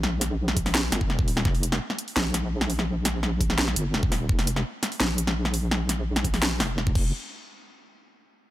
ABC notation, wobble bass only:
X:1
M:4/4
L:1/8
Q:1/4=169
K:Bbdor
V:1 name="Wobble bass" clef=bass
B,,,4- B,,, G,,, E,,,2 | F,,,2 z2 B,,,4- | B,,,4- B,,, G,,, E,,,2 | F,,,2 z2 B,,,4- |
B,,,4- B,,, F,,,2 F,,, | z8 |]